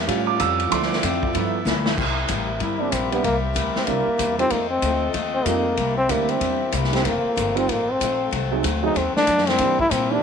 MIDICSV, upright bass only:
0, 0, Header, 1, 3, 480
1, 0, Start_track
1, 0, Tempo, 316790
1, 1083, Time_signature, 4, 2, 24, 8
1, 15497, End_track
2, 0, Start_track
2, 0, Title_t, "Upright bass"
2, 0, Program_c, 0, 32
2, 122, Note_on_c, 0, 45, 87
2, 588, Note_off_c, 0, 45, 0
2, 607, Note_on_c, 0, 41, 103
2, 1070, Note_off_c, 0, 41, 0
2, 1092, Note_on_c, 0, 38, 84
2, 1552, Note_off_c, 0, 38, 0
2, 1561, Note_on_c, 0, 41, 102
2, 2025, Note_off_c, 0, 41, 0
2, 2044, Note_on_c, 0, 43, 81
2, 2499, Note_off_c, 0, 43, 0
2, 2508, Note_on_c, 0, 38, 110
2, 2978, Note_off_c, 0, 38, 0
2, 2989, Note_on_c, 0, 36, 82
2, 3458, Note_off_c, 0, 36, 0
2, 3478, Note_on_c, 0, 33, 89
2, 3942, Note_off_c, 0, 33, 0
2, 3949, Note_on_c, 0, 31, 80
2, 4417, Note_off_c, 0, 31, 0
2, 4427, Note_on_c, 0, 34, 88
2, 4895, Note_off_c, 0, 34, 0
2, 4909, Note_on_c, 0, 36, 90
2, 5376, Note_off_c, 0, 36, 0
2, 5389, Note_on_c, 0, 38, 86
2, 5670, Note_off_c, 0, 38, 0
2, 5869, Note_on_c, 0, 36, 86
2, 6150, Note_off_c, 0, 36, 0
2, 6350, Note_on_c, 0, 40, 92
2, 6817, Note_off_c, 0, 40, 0
2, 6829, Note_on_c, 0, 41, 81
2, 7296, Note_off_c, 0, 41, 0
2, 7307, Note_on_c, 0, 38, 107
2, 7775, Note_off_c, 0, 38, 0
2, 7791, Note_on_c, 0, 39, 91
2, 8255, Note_off_c, 0, 39, 0
2, 8264, Note_on_c, 0, 41, 104
2, 8734, Note_off_c, 0, 41, 0
2, 8743, Note_on_c, 0, 36, 87
2, 9214, Note_off_c, 0, 36, 0
2, 9231, Note_on_c, 0, 38, 98
2, 9699, Note_off_c, 0, 38, 0
2, 9708, Note_on_c, 0, 40, 85
2, 10177, Note_off_c, 0, 40, 0
2, 10195, Note_on_c, 0, 36, 95
2, 10662, Note_off_c, 0, 36, 0
2, 10683, Note_on_c, 0, 29, 79
2, 10955, Note_off_c, 0, 29, 0
2, 11169, Note_on_c, 0, 31, 96
2, 11630, Note_off_c, 0, 31, 0
2, 11651, Note_on_c, 0, 33, 77
2, 12112, Note_off_c, 0, 33, 0
2, 12132, Note_on_c, 0, 34, 83
2, 12592, Note_off_c, 0, 34, 0
2, 12616, Note_on_c, 0, 36, 87
2, 13075, Note_off_c, 0, 36, 0
2, 13091, Note_on_c, 0, 38, 108
2, 13553, Note_off_c, 0, 38, 0
2, 13566, Note_on_c, 0, 39, 87
2, 13845, Note_off_c, 0, 39, 0
2, 14053, Note_on_c, 0, 42, 93
2, 14515, Note_off_c, 0, 42, 0
2, 14528, Note_on_c, 0, 43, 82
2, 14993, Note_off_c, 0, 43, 0
2, 15018, Note_on_c, 0, 46, 103
2, 15479, Note_off_c, 0, 46, 0
2, 15497, End_track
3, 0, Start_track
3, 0, Title_t, "Muted upright bass strokes"
3, 5691, Note_on_c, 9, 29, 36
3, 5843, Note_off_c, 9, 29, 0
3, 6170, Note_on_c, 9, 29, 40
3, 6321, Note_off_c, 9, 29, 0
3, 10964, Note_on_c, 9, 29, 42
3, 11116, Note_off_c, 9, 29, 0
3, 13855, Note_on_c, 9, 29, 46
3, 14007, Note_off_c, 9, 29, 0
3, 15497, End_track
0, 0, End_of_file